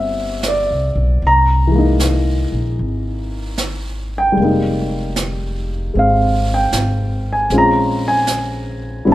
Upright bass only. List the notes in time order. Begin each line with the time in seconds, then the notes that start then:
Already playing: G1
0.71 C2
0.96 B1
1.22 C2
2.52 A#1
2.79 G#1
4.37 F1
5.95 G#1
6.72 G#1
7.50 A#1
9.07 A1